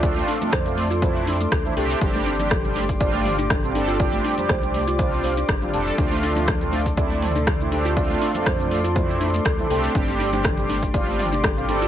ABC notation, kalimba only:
X:1
M:4/4
L:1/16
Q:"Swing 16ths" 1/4=121
K:Dm
V:1 name="Kalimba"
d z D z c z2 F c z D A, A z A z | D D D D A z D z d z2 D A z D F | d z D z c z2 F c z c D D z d z | D D D D A z D z d z2 D A z D F |
d z D z c z2 F c z D A, A z A z | D D D D A z D z d z2 D A z D F |]